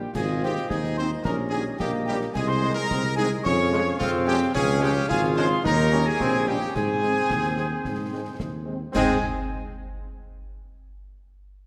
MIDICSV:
0, 0, Header, 1, 9, 480
1, 0, Start_track
1, 0, Key_signature, -4, "major"
1, 0, Tempo, 549451
1, 131, Time_signature, 2, 2, 24, 8
1, 10193, End_track
2, 0, Start_track
2, 0, Title_t, "Piccolo"
2, 0, Program_c, 0, 72
2, 0, Note_on_c, 0, 79, 66
2, 116, Note_off_c, 0, 79, 0
2, 130, Note_on_c, 0, 80, 114
2, 184, Note_off_c, 0, 80, 0
2, 377, Note_on_c, 0, 79, 91
2, 431, Note_off_c, 0, 79, 0
2, 606, Note_on_c, 0, 80, 84
2, 661, Note_off_c, 0, 80, 0
2, 850, Note_on_c, 0, 84, 107
2, 904, Note_off_c, 0, 84, 0
2, 1087, Note_on_c, 0, 82, 109
2, 1141, Note_off_c, 0, 82, 0
2, 1326, Note_on_c, 0, 80, 91
2, 1380, Note_off_c, 0, 80, 0
2, 1560, Note_on_c, 0, 79, 90
2, 1616, Note_off_c, 0, 79, 0
2, 1797, Note_on_c, 0, 79, 102
2, 1852, Note_off_c, 0, 79, 0
2, 2045, Note_on_c, 0, 80, 121
2, 2097, Note_off_c, 0, 80, 0
2, 2159, Note_on_c, 0, 84, 114
2, 2402, Note_on_c, 0, 82, 110
2, 2416, Note_off_c, 0, 84, 0
2, 2750, Note_off_c, 0, 82, 0
2, 2755, Note_on_c, 0, 80, 99
2, 2811, Note_off_c, 0, 80, 0
2, 2998, Note_on_c, 0, 85, 127
2, 3451, Note_off_c, 0, 85, 0
2, 3480, Note_on_c, 0, 77, 100
2, 3536, Note_off_c, 0, 77, 0
2, 3724, Note_on_c, 0, 79, 121
2, 3951, Note_off_c, 0, 79, 0
2, 3972, Note_on_c, 0, 80, 127
2, 4026, Note_off_c, 0, 80, 0
2, 4214, Note_on_c, 0, 79, 127
2, 4268, Note_off_c, 0, 79, 0
2, 4464, Note_on_c, 0, 80, 115
2, 4682, Note_off_c, 0, 80, 0
2, 4695, Note_on_c, 0, 84, 127
2, 4917, Note_off_c, 0, 84, 0
2, 4946, Note_on_c, 0, 82, 127
2, 5295, Note_on_c, 0, 80, 122
2, 5308, Note_off_c, 0, 82, 0
2, 5657, Note_on_c, 0, 79, 109
2, 5671, Note_off_c, 0, 80, 0
2, 5882, Note_off_c, 0, 79, 0
2, 5887, Note_on_c, 0, 80, 125
2, 7295, Note_off_c, 0, 80, 0
2, 7820, Note_on_c, 0, 80, 114
2, 8084, Note_off_c, 0, 80, 0
2, 10193, End_track
3, 0, Start_track
3, 0, Title_t, "Woodwind section"
3, 0, Program_c, 1, 71
3, 130, Note_on_c, 1, 75, 85
3, 136, Note_on_c, 1, 72, 81
3, 577, Note_off_c, 1, 75, 0
3, 580, Note_off_c, 1, 72, 0
3, 609, Note_on_c, 1, 75, 91
3, 611, Note_on_c, 1, 72, 88
3, 1057, Note_off_c, 1, 75, 0
3, 1058, Note_off_c, 1, 72, 0
3, 1087, Note_on_c, 1, 67, 80
3, 1094, Note_on_c, 1, 75, 77
3, 1539, Note_off_c, 1, 75, 0
3, 1559, Note_off_c, 1, 67, 0
3, 1566, Note_on_c, 1, 75, 94
3, 1570, Note_on_c, 1, 67, 94
3, 2015, Note_off_c, 1, 75, 0
3, 2017, Note_off_c, 1, 67, 0
3, 2054, Note_on_c, 1, 75, 89
3, 2055, Note_on_c, 1, 68, 94
3, 2978, Note_off_c, 1, 75, 0
3, 3004, Note_off_c, 1, 68, 0
3, 3015, Note_on_c, 1, 68, 93
3, 3015, Note_on_c, 1, 77, 101
3, 3460, Note_off_c, 1, 68, 0
3, 3491, Note_off_c, 1, 77, 0
3, 3501, Note_on_c, 1, 77, 108
3, 3503, Note_on_c, 1, 68, 104
3, 3943, Note_off_c, 1, 77, 0
3, 3944, Note_off_c, 1, 68, 0
3, 3976, Note_on_c, 1, 68, 107
3, 3978, Note_on_c, 1, 77, 109
3, 4420, Note_off_c, 1, 68, 0
3, 4421, Note_off_c, 1, 77, 0
3, 4451, Note_on_c, 1, 77, 122
3, 4454, Note_on_c, 1, 68, 117
3, 4898, Note_off_c, 1, 77, 0
3, 4899, Note_off_c, 1, 68, 0
3, 4933, Note_on_c, 1, 73, 102
3, 4936, Note_on_c, 1, 67, 105
3, 5859, Note_off_c, 1, 67, 0
3, 5891, Note_on_c, 1, 72, 85
3, 5892, Note_off_c, 1, 73, 0
3, 5895, Note_on_c, 1, 68, 83
3, 7536, Note_off_c, 1, 72, 0
3, 7539, Note_off_c, 1, 68, 0
3, 7809, Note_on_c, 1, 68, 92
3, 7812, Note_on_c, 1, 72, 91
3, 8011, Note_off_c, 1, 68, 0
3, 8013, Note_off_c, 1, 72, 0
3, 10193, End_track
4, 0, Start_track
4, 0, Title_t, "Trumpet section"
4, 0, Program_c, 2, 61
4, 0, Note_on_c, 2, 67, 83
4, 127, Note_on_c, 2, 68, 104
4, 136, Note_off_c, 2, 67, 0
4, 352, Note_off_c, 2, 68, 0
4, 375, Note_on_c, 2, 67, 110
4, 597, Note_off_c, 2, 67, 0
4, 607, Note_on_c, 2, 68, 116
4, 849, Note_off_c, 2, 68, 0
4, 855, Note_on_c, 2, 72, 109
4, 962, Note_off_c, 2, 72, 0
4, 1079, Note_on_c, 2, 70, 104
4, 1190, Note_off_c, 2, 70, 0
4, 1308, Note_on_c, 2, 68, 114
4, 1421, Note_off_c, 2, 68, 0
4, 1568, Note_on_c, 2, 67, 106
4, 1677, Note_off_c, 2, 67, 0
4, 1806, Note_on_c, 2, 67, 113
4, 1915, Note_off_c, 2, 67, 0
4, 2052, Note_on_c, 2, 68, 110
4, 2163, Note_off_c, 2, 68, 0
4, 2172, Note_on_c, 2, 72, 116
4, 2399, Note_on_c, 2, 70, 127
4, 2412, Note_off_c, 2, 72, 0
4, 2740, Note_off_c, 2, 70, 0
4, 2770, Note_on_c, 2, 68, 127
4, 2879, Note_off_c, 2, 68, 0
4, 3005, Note_on_c, 2, 73, 119
4, 3455, Note_off_c, 2, 73, 0
4, 3476, Note_on_c, 2, 65, 127
4, 3588, Note_off_c, 2, 65, 0
4, 3725, Note_on_c, 2, 67, 127
4, 3835, Note_off_c, 2, 67, 0
4, 3961, Note_on_c, 2, 68, 127
4, 4189, Note_off_c, 2, 68, 0
4, 4200, Note_on_c, 2, 67, 127
4, 4445, Note_on_c, 2, 68, 127
4, 4446, Note_off_c, 2, 67, 0
4, 4554, Note_off_c, 2, 68, 0
4, 4685, Note_on_c, 2, 72, 127
4, 4795, Note_off_c, 2, 72, 0
4, 4932, Note_on_c, 2, 70, 127
4, 5267, Note_off_c, 2, 70, 0
4, 5293, Note_on_c, 2, 68, 127
4, 5652, Note_off_c, 2, 68, 0
4, 5661, Note_on_c, 2, 67, 119
4, 5897, Note_off_c, 2, 67, 0
4, 5903, Note_on_c, 2, 68, 119
4, 7303, Note_off_c, 2, 68, 0
4, 7815, Note_on_c, 2, 68, 111
4, 8014, Note_off_c, 2, 68, 0
4, 10193, End_track
5, 0, Start_track
5, 0, Title_t, "Euphonium"
5, 0, Program_c, 3, 58
5, 124, Note_on_c, 3, 65, 105
5, 606, Note_on_c, 3, 63, 92
5, 619, Note_off_c, 3, 65, 0
5, 1086, Note_off_c, 3, 63, 0
5, 1092, Note_on_c, 3, 61, 101
5, 1538, Note_off_c, 3, 61, 0
5, 1569, Note_on_c, 3, 58, 102
5, 2017, Note_off_c, 3, 58, 0
5, 2058, Note_on_c, 3, 56, 100
5, 2501, Note_off_c, 3, 56, 0
5, 2537, Note_on_c, 3, 60, 105
5, 2644, Note_off_c, 3, 60, 0
5, 2773, Note_on_c, 3, 63, 97
5, 2880, Note_off_c, 3, 63, 0
5, 3006, Note_on_c, 3, 61, 118
5, 3455, Note_off_c, 3, 61, 0
5, 3496, Note_on_c, 3, 60, 127
5, 3941, Note_off_c, 3, 60, 0
5, 3971, Note_on_c, 3, 61, 124
5, 4451, Note_on_c, 3, 65, 127
5, 4464, Note_off_c, 3, 61, 0
5, 4924, Note_off_c, 3, 65, 0
5, 4929, Note_on_c, 3, 63, 127
5, 5377, Note_off_c, 3, 63, 0
5, 5422, Note_on_c, 3, 60, 122
5, 5662, Note_on_c, 3, 58, 91
5, 5675, Note_off_c, 3, 60, 0
5, 5879, Note_off_c, 3, 58, 0
5, 5884, Note_on_c, 3, 60, 106
5, 7533, Note_off_c, 3, 60, 0
5, 10193, End_track
6, 0, Start_track
6, 0, Title_t, "French horn section"
6, 0, Program_c, 4, 60
6, 374, Note_on_c, 4, 51, 74
6, 376, Note_on_c, 4, 60, 72
6, 376, Note_on_c, 4, 63, 69
6, 460, Note_off_c, 4, 51, 0
6, 461, Note_off_c, 4, 63, 0
6, 462, Note_off_c, 4, 60, 0
6, 856, Note_on_c, 4, 51, 74
6, 856, Note_on_c, 4, 60, 74
6, 857, Note_on_c, 4, 63, 74
6, 941, Note_off_c, 4, 51, 0
6, 941, Note_off_c, 4, 60, 0
6, 942, Note_off_c, 4, 63, 0
6, 1327, Note_on_c, 4, 63, 74
6, 1329, Note_on_c, 4, 55, 67
6, 1329, Note_on_c, 4, 61, 71
6, 1415, Note_off_c, 4, 63, 0
6, 1416, Note_off_c, 4, 55, 0
6, 1416, Note_off_c, 4, 61, 0
6, 1810, Note_on_c, 4, 55, 75
6, 1810, Note_on_c, 4, 63, 79
6, 1811, Note_on_c, 4, 61, 73
6, 1897, Note_off_c, 4, 55, 0
6, 1897, Note_off_c, 4, 63, 0
6, 1898, Note_off_c, 4, 61, 0
6, 2290, Note_on_c, 4, 60, 77
6, 2290, Note_on_c, 4, 63, 84
6, 2294, Note_on_c, 4, 56, 84
6, 2377, Note_off_c, 4, 60, 0
6, 2377, Note_off_c, 4, 63, 0
6, 2380, Note_off_c, 4, 56, 0
6, 2777, Note_on_c, 4, 60, 87
6, 2777, Note_on_c, 4, 63, 84
6, 2778, Note_on_c, 4, 56, 84
6, 2862, Note_off_c, 4, 60, 0
6, 2863, Note_off_c, 4, 56, 0
6, 2863, Note_off_c, 4, 63, 0
6, 3250, Note_on_c, 4, 61, 92
6, 3253, Note_on_c, 4, 53, 86
6, 3253, Note_on_c, 4, 56, 80
6, 3337, Note_off_c, 4, 61, 0
6, 3339, Note_off_c, 4, 53, 0
6, 3339, Note_off_c, 4, 56, 0
6, 3729, Note_on_c, 4, 53, 86
6, 3730, Note_on_c, 4, 56, 91
6, 3732, Note_on_c, 4, 61, 95
6, 3816, Note_off_c, 4, 53, 0
6, 3817, Note_off_c, 4, 56, 0
6, 3819, Note_off_c, 4, 61, 0
6, 4214, Note_on_c, 4, 61, 97
6, 4216, Note_on_c, 4, 56, 95
6, 4218, Note_on_c, 4, 53, 97
6, 4300, Note_off_c, 4, 61, 0
6, 4302, Note_off_c, 4, 56, 0
6, 4303, Note_off_c, 4, 53, 0
6, 4697, Note_on_c, 4, 56, 92
6, 4699, Note_on_c, 4, 53, 93
6, 4699, Note_on_c, 4, 61, 99
6, 4782, Note_off_c, 4, 56, 0
6, 4784, Note_off_c, 4, 53, 0
6, 4784, Note_off_c, 4, 61, 0
6, 5181, Note_on_c, 4, 55, 89
6, 5181, Note_on_c, 4, 61, 89
6, 5183, Note_on_c, 4, 51, 88
6, 5265, Note_off_c, 4, 55, 0
6, 5265, Note_off_c, 4, 61, 0
6, 5267, Note_off_c, 4, 51, 0
6, 5656, Note_on_c, 4, 51, 80
6, 5656, Note_on_c, 4, 61, 75
6, 5657, Note_on_c, 4, 55, 88
6, 5741, Note_off_c, 4, 51, 0
6, 5741, Note_off_c, 4, 61, 0
6, 5743, Note_off_c, 4, 55, 0
6, 6136, Note_on_c, 4, 56, 74
6, 6136, Note_on_c, 4, 60, 69
6, 6137, Note_on_c, 4, 51, 72
6, 6221, Note_off_c, 4, 56, 0
6, 6221, Note_off_c, 4, 60, 0
6, 6222, Note_off_c, 4, 51, 0
6, 6618, Note_on_c, 4, 56, 66
6, 6619, Note_on_c, 4, 51, 65
6, 6621, Note_on_c, 4, 60, 66
6, 6703, Note_off_c, 4, 56, 0
6, 6704, Note_off_c, 4, 51, 0
6, 6705, Note_off_c, 4, 60, 0
6, 7097, Note_on_c, 4, 51, 62
6, 7097, Note_on_c, 4, 56, 67
6, 7098, Note_on_c, 4, 60, 65
6, 7182, Note_off_c, 4, 51, 0
6, 7182, Note_off_c, 4, 56, 0
6, 7183, Note_off_c, 4, 60, 0
6, 7572, Note_on_c, 4, 60, 64
6, 7573, Note_on_c, 4, 51, 57
6, 7573, Note_on_c, 4, 56, 61
6, 7658, Note_off_c, 4, 60, 0
6, 7659, Note_off_c, 4, 51, 0
6, 7659, Note_off_c, 4, 56, 0
6, 7819, Note_on_c, 4, 56, 109
6, 7820, Note_on_c, 4, 60, 103
6, 8017, Note_off_c, 4, 56, 0
6, 8018, Note_off_c, 4, 60, 0
6, 10193, End_track
7, 0, Start_track
7, 0, Title_t, "Trombone section"
7, 0, Program_c, 5, 61
7, 0, Note_on_c, 5, 55, 73
7, 110, Note_off_c, 5, 55, 0
7, 371, Note_on_c, 5, 60, 82
7, 373, Note_on_c, 5, 51, 80
7, 455, Note_off_c, 5, 60, 0
7, 456, Note_off_c, 5, 51, 0
7, 862, Note_on_c, 5, 51, 78
7, 862, Note_on_c, 5, 60, 84
7, 942, Note_off_c, 5, 51, 0
7, 942, Note_off_c, 5, 60, 0
7, 1330, Note_on_c, 5, 55, 77
7, 1333, Note_on_c, 5, 51, 76
7, 1414, Note_off_c, 5, 55, 0
7, 1417, Note_off_c, 5, 51, 0
7, 1817, Note_on_c, 5, 55, 92
7, 1818, Note_on_c, 5, 51, 87
7, 1899, Note_off_c, 5, 51, 0
7, 1899, Note_off_c, 5, 55, 0
7, 2284, Note_on_c, 5, 56, 89
7, 2286, Note_on_c, 5, 51, 90
7, 2371, Note_off_c, 5, 56, 0
7, 2372, Note_off_c, 5, 51, 0
7, 2772, Note_on_c, 5, 56, 95
7, 2778, Note_on_c, 5, 51, 96
7, 2856, Note_off_c, 5, 56, 0
7, 2859, Note_off_c, 5, 51, 0
7, 3243, Note_on_c, 5, 53, 106
7, 3244, Note_on_c, 5, 56, 101
7, 3330, Note_off_c, 5, 53, 0
7, 3330, Note_off_c, 5, 56, 0
7, 3716, Note_on_c, 5, 53, 101
7, 3718, Note_on_c, 5, 56, 109
7, 3805, Note_off_c, 5, 53, 0
7, 3807, Note_off_c, 5, 56, 0
7, 4191, Note_on_c, 5, 53, 106
7, 4192, Note_on_c, 5, 56, 105
7, 4282, Note_off_c, 5, 53, 0
7, 4283, Note_off_c, 5, 56, 0
7, 4676, Note_on_c, 5, 53, 106
7, 4677, Note_on_c, 5, 56, 110
7, 4765, Note_off_c, 5, 53, 0
7, 4766, Note_off_c, 5, 56, 0
7, 5165, Note_on_c, 5, 55, 102
7, 5168, Note_on_c, 5, 61, 103
7, 5251, Note_off_c, 5, 55, 0
7, 5253, Note_off_c, 5, 61, 0
7, 5643, Note_on_c, 5, 61, 81
7, 5647, Note_on_c, 5, 55, 89
7, 5730, Note_off_c, 5, 61, 0
7, 5732, Note_off_c, 5, 55, 0
7, 6119, Note_on_c, 5, 60, 78
7, 6124, Note_on_c, 5, 56, 77
7, 6207, Note_off_c, 5, 60, 0
7, 6210, Note_off_c, 5, 56, 0
7, 6612, Note_on_c, 5, 56, 74
7, 6621, Note_on_c, 5, 60, 73
7, 6696, Note_off_c, 5, 56, 0
7, 6702, Note_off_c, 5, 60, 0
7, 7086, Note_on_c, 5, 60, 70
7, 7091, Note_on_c, 5, 56, 72
7, 7172, Note_off_c, 5, 60, 0
7, 7175, Note_off_c, 5, 56, 0
7, 7554, Note_on_c, 5, 56, 69
7, 7555, Note_on_c, 5, 60, 70
7, 7644, Note_off_c, 5, 56, 0
7, 7645, Note_off_c, 5, 60, 0
7, 7799, Note_on_c, 5, 56, 106
7, 7800, Note_on_c, 5, 60, 112
7, 8004, Note_off_c, 5, 56, 0
7, 8005, Note_off_c, 5, 60, 0
7, 10193, End_track
8, 0, Start_track
8, 0, Title_t, "Tuba"
8, 0, Program_c, 6, 58
8, 130, Note_on_c, 6, 32, 111
8, 490, Note_off_c, 6, 32, 0
8, 610, Note_on_c, 6, 39, 85
8, 1011, Note_off_c, 6, 39, 0
8, 1090, Note_on_c, 6, 34, 101
8, 1491, Note_off_c, 6, 34, 0
8, 1571, Note_on_c, 6, 34, 94
8, 1971, Note_off_c, 6, 34, 0
8, 2050, Note_on_c, 6, 36, 110
8, 2451, Note_off_c, 6, 36, 0
8, 2535, Note_on_c, 6, 36, 88
8, 2933, Note_off_c, 6, 36, 0
8, 3020, Note_on_c, 6, 41, 121
8, 3416, Note_off_c, 6, 41, 0
8, 3491, Note_on_c, 6, 41, 111
8, 3891, Note_off_c, 6, 41, 0
8, 3981, Note_on_c, 6, 37, 127
8, 4376, Note_off_c, 6, 37, 0
8, 4460, Note_on_c, 6, 32, 111
8, 4856, Note_off_c, 6, 32, 0
8, 4938, Note_on_c, 6, 39, 127
8, 5335, Note_off_c, 6, 39, 0
8, 5418, Note_on_c, 6, 34, 97
8, 5815, Note_off_c, 6, 34, 0
8, 5901, Note_on_c, 6, 44, 103
8, 6296, Note_off_c, 6, 44, 0
8, 6382, Note_on_c, 6, 39, 89
8, 6777, Note_off_c, 6, 39, 0
8, 6861, Note_on_c, 6, 44, 90
8, 7256, Note_off_c, 6, 44, 0
8, 7335, Note_on_c, 6, 39, 71
8, 7733, Note_off_c, 6, 39, 0
8, 7816, Note_on_c, 6, 44, 115
8, 8015, Note_off_c, 6, 44, 0
8, 10193, End_track
9, 0, Start_track
9, 0, Title_t, "Drums"
9, 131, Note_on_c, 9, 35, 89
9, 131, Note_on_c, 9, 38, 81
9, 131, Note_on_c, 9, 49, 62
9, 218, Note_off_c, 9, 35, 0
9, 218, Note_off_c, 9, 38, 0
9, 218, Note_off_c, 9, 49, 0
9, 377, Note_on_c, 9, 38, 57
9, 465, Note_off_c, 9, 38, 0
9, 496, Note_on_c, 9, 38, 57
9, 583, Note_off_c, 9, 38, 0
9, 615, Note_on_c, 9, 35, 92
9, 615, Note_on_c, 9, 38, 92
9, 702, Note_off_c, 9, 35, 0
9, 702, Note_off_c, 9, 38, 0
9, 735, Note_on_c, 9, 38, 62
9, 822, Note_off_c, 9, 38, 0
9, 855, Note_on_c, 9, 38, 63
9, 943, Note_off_c, 9, 38, 0
9, 1092, Note_on_c, 9, 35, 89
9, 1092, Note_on_c, 9, 38, 87
9, 1180, Note_off_c, 9, 35, 0
9, 1180, Note_off_c, 9, 38, 0
9, 1332, Note_on_c, 9, 38, 61
9, 1420, Note_off_c, 9, 38, 0
9, 1572, Note_on_c, 9, 35, 93
9, 1572, Note_on_c, 9, 38, 84
9, 1660, Note_off_c, 9, 35, 0
9, 1660, Note_off_c, 9, 38, 0
9, 1933, Note_on_c, 9, 38, 57
9, 2021, Note_off_c, 9, 38, 0
9, 2055, Note_on_c, 9, 35, 81
9, 2055, Note_on_c, 9, 38, 80
9, 2055, Note_on_c, 9, 49, 37
9, 2143, Note_off_c, 9, 35, 0
9, 2143, Note_off_c, 9, 38, 0
9, 2143, Note_off_c, 9, 49, 0
9, 2298, Note_on_c, 9, 38, 57
9, 2385, Note_off_c, 9, 38, 0
9, 2418, Note_on_c, 9, 38, 56
9, 2506, Note_off_c, 9, 38, 0
9, 2541, Note_on_c, 9, 35, 90
9, 2541, Note_on_c, 9, 38, 89
9, 2628, Note_off_c, 9, 35, 0
9, 2628, Note_off_c, 9, 38, 0
9, 2661, Note_on_c, 9, 38, 63
9, 2748, Note_off_c, 9, 38, 0
9, 2780, Note_on_c, 9, 38, 65
9, 2868, Note_off_c, 9, 38, 0
9, 3023, Note_on_c, 9, 35, 89
9, 3023, Note_on_c, 9, 38, 75
9, 3110, Note_off_c, 9, 35, 0
9, 3110, Note_off_c, 9, 38, 0
9, 3259, Note_on_c, 9, 38, 56
9, 3347, Note_off_c, 9, 38, 0
9, 3501, Note_on_c, 9, 35, 94
9, 3501, Note_on_c, 9, 38, 101
9, 3589, Note_off_c, 9, 35, 0
9, 3589, Note_off_c, 9, 38, 0
9, 3862, Note_on_c, 9, 38, 58
9, 3950, Note_off_c, 9, 38, 0
9, 3979, Note_on_c, 9, 35, 94
9, 3979, Note_on_c, 9, 38, 86
9, 3979, Note_on_c, 9, 49, 36
9, 4066, Note_off_c, 9, 35, 0
9, 4066, Note_off_c, 9, 38, 0
9, 4066, Note_off_c, 9, 49, 0
9, 4216, Note_on_c, 9, 38, 57
9, 4304, Note_off_c, 9, 38, 0
9, 4338, Note_on_c, 9, 38, 59
9, 4425, Note_off_c, 9, 38, 0
9, 4463, Note_on_c, 9, 35, 98
9, 4463, Note_on_c, 9, 38, 93
9, 4550, Note_off_c, 9, 35, 0
9, 4550, Note_off_c, 9, 38, 0
9, 4577, Note_on_c, 9, 38, 68
9, 4664, Note_off_c, 9, 38, 0
9, 4698, Note_on_c, 9, 38, 68
9, 4785, Note_off_c, 9, 38, 0
9, 4940, Note_on_c, 9, 35, 98
9, 4940, Note_on_c, 9, 38, 88
9, 5028, Note_off_c, 9, 35, 0
9, 5028, Note_off_c, 9, 38, 0
9, 5179, Note_on_c, 9, 38, 55
9, 5267, Note_off_c, 9, 38, 0
9, 5418, Note_on_c, 9, 35, 97
9, 5418, Note_on_c, 9, 38, 86
9, 5506, Note_off_c, 9, 35, 0
9, 5506, Note_off_c, 9, 38, 0
9, 5781, Note_on_c, 9, 38, 55
9, 5868, Note_off_c, 9, 38, 0
9, 5903, Note_on_c, 9, 35, 90
9, 5903, Note_on_c, 9, 38, 80
9, 5903, Note_on_c, 9, 49, 34
9, 5990, Note_off_c, 9, 35, 0
9, 5990, Note_off_c, 9, 38, 0
9, 5990, Note_off_c, 9, 49, 0
9, 6146, Note_on_c, 9, 38, 55
9, 6233, Note_off_c, 9, 38, 0
9, 6262, Note_on_c, 9, 38, 57
9, 6350, Note_off_c, 9, 38, 0
9, 6380, Note_on_c, 9, 35, 93
9, 6380, Note_on_c, 9, 38, 86
9, 6467, Note_off_c, 9, 35, 0
9, 6467, Note_off_c, 9, 38, 0
9, 6496, Note_on_c, 9, 38, 65
9, 6584, Note_off_c, 9, 38, 0
9, 6616, Note_on_c, 9, 38, 59
9, 6703, Note_off_c, 9, 38, 0
9, 6857, Note_on_c, 9, 35, 80
9, 6857, Note_on_c, 9, 38, 63
9, 6944, Note_off_c, 9, 35, 0
9, 6944, Note_off_c, 9, 38, 0
9, 7335, Note_on_c, 9, 35, 84
9, 7335, Note_on_c, 9, 38, 88
9, 7422, Note_off_c, 9, 35, 0
9, 7422, Note_off_c, 9, 38, 0
9, 7816, Note_on_c, 9, 35, 103
9, 7816, Note_on_c, 9, 38, 106
9, 7816, Note_on_c, 9, 49, 83
9, 7903, Note_off_c, 9, 35, 0
9, 7903, Note_off_c, 9, 38, 0
9, 7903, Note_off_c, 9, 49, 0
9, 10193, End_track
0, 0, End_of_file